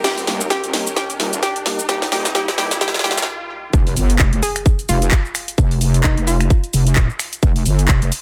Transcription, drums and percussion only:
0.04 kick loud
0.04 snare medium
0.04 closed hi-hat medium
0.04 shaker medium
0.18 open hi-hat medium
0.18 shaker soft
0.27 snare medium
0.27 open hi-hat loud
0.41 shaker medium
0.50 kick loud
0.50 snare medium
0.50 closed hi-hat medium
0.50 shaker medium
0.64 closed hi-hat medium
0.64 shaker soft
0.73 snare medium
0.73 open hi-hat loud
0.87 shaker medium
0.97 kick loud
0.97 snare medium
0.97 closed hi-hat medium
0.97 shaker medium
1.10 closed hi-hat medium
1.10 shaker soft
1.20 snare medium
1.20 open hi-hat loud
1.33 closed hi-hat soft
1.33 shaker medium
1.43 kick loud
1.43 snare medium
1.43 closed hi-hat medium
1.43 shaker medium
1.56 closed hi-hat medium
1.56 shaker soft
1.66 snare medium
1.66 open hi-hat loud
1.79 shaker medium
1.89 kick loud
1.89 snare medium
1.89 closed hi-hat medium
1.89 shaker medium
2.02 snare medium
2.02 open hi-hat medium
2.02 shaker soft
2.12 snare medium
2.12 open hi-hat loud
2.25 snare medium
2.25 closed hi-hat soft
2.25 shaker medium
2.35 kick loud
2.35 snare medium
2.35 closed hi-hat medium
2.35 shaker medium
2.48 snare medium
2.48 closed hi-hat medium
2.48 shaker soft
2.58 snare loud
2.58 open hi-hat loud
2.71 snare medium
2.71 closed hi-hat soft
2.71 shaker medium
2.81 kick loud
2.81 snare loud
2.81 closed hi-hat medium
2.81 shaker medium
2.88 snare medium
2.94 snare medium
2.94 open hi-hat medium
2.94 shaker soft
2.99 snare medium
3.04 snare loud
3.04 open hi-hat loud
3.11 snare loud
3.17 snare medium
3.17 closed hi-hat soft
3.17 shaker medium
3.22 snare medium
3.73 kick loud
3.73 shaker soft
3.87 open hi-hat medium
3.87 shaker soft
3.97 open hi-hat loud
3.97 shaker medium
4.10 closed hi-hat medium
4.10 shaker soft
4.19 kick loud
4.19 clap loud
4.19 shaker soft
4.33 closed hi-hat medium
4.33 shaker soft
4.43 open hi-hat loud
4.43 shaker medium
4.56 finger snap medium
4.56 closed hi-hat medium
4.56 shaker soft
4.66 kick loud
4.66 shaker soft
4.79 closed hi-hat soft
4.79 shaker soft
4.89 open hi-hat loud
4.89 shaker medium
5.02 closed hi-hat medium
5.02 shaker soft
5.11 kick loud
5.11 clap loud
5.11 shaker soft
5.25 shaker soft
5.35 finger snap medium
5.35 open hi-hat loud
5.35 shaker medium
5.48 closed hi-hat medium
5.48 shaker soft
5.58 kick loud
5.58 shaker soft
5.71 open hi-hat medium
5.71 shaker soft
5.81 open hi-hat loud
5.81 shaker medium
5.94 closed hi-hat medium
5.94 shaker soft
6.04 kick loud
6.04 clap loud
6.04 shaker soft
6.18 closed hi-hat medium
6.18 shaker soft
6.27 open hi-hat loud
6.27 shaker medium
6.41 finger snap medium
6.41 closed hi-hat medium
6.41 shaker soft
6.50 kick loud
6.50 shaker soft
6.64 closed hi-hat soft
6.64 shaker soft
6.73 open hi-hat loud
6.73 shaker medium
6.87 closed hi-hat medium
6.87 shaker soft
6.96 kick loud
6.96 clap loud
6.96 shaker soft
7.10 shaker soft
7.19 finger snap medium
7.19 open hi-hat loud
7.19 shaker medium
7.33 closed hi-hat medium
7.33 shaker soft
7.43 kick loud
7.43 shaker soft
7.56 open hi-hat medium
7.56 shaker soft
7.66 open hi-hat loud
7.66 shaker medium
7.79 closed hi-hat medium
7.79 shaker soft
7.88 kick loud
7.88 clap loud
7.88 shaker soft
8.02 closed hi-hat medium
8.02 shaker soft
8.12 open hi-hat loud
8.12 shaker medium

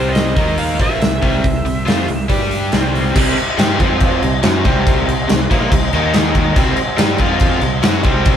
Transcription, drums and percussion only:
0.15 snare loud
0.15 open hi-hat medium
0.36 kick loud
0.36 open hi-hat medium
0.58 open hi-hat medium
0.80 kick medium
0.80 open hi-hat soft
1.02 snare loud
1.02 open hi-hat medium
1.22 kick loud
1.22 open hi-hat soft
1.44 kick medium
1.44 open hi-hat medium
1.66 open hi-hat soft
1.88 snare loud
1.88 open hi-hat medium
2.08 open hi-hat soft
2.29 kick medium
2.29 open hi-hat medium
2.51 open hi-hat medium
2.72 snare loud
2.72 open hi-hat medium
2.95 open hi-hat soft
3.16 kick loud
3.16 crash loud
3.16 crash medium
3.38 crash medium
3.59 snare loud
3.59 crash medium
3.80 kick medium
3.80 crash medium
4.00 kick loud
4.00 crash medium
4.23 crash medium
4.43 snare loud
4.43 crash medium
4.65 kick medium
4.65 crash medium
4.87 kick loud
4.87 crash medium
5.09 crash medium
5.29 snare loud
5.29 crash medium
5.51 kick medium
5.51 crash medium
5.72 kick loud
5.72 crash medium
5.93 crash medium
6.14 snare loud
6.14 crash medium
6.35 kick medium
6.35 crash medium
6.56 kick loud
6.56 crash medium
6.77 crash medium
6.98 snare loud
6.98 crash medium
7.18 kick medium
7.18 crash medium
7.40 kick loud
7.40 crash medium
7.61 crash medium
7.83 snare loud
7.83 crash medium
8.03 kick medium
8.03 crash medium
8.25 kick loud
8.25 crash medium

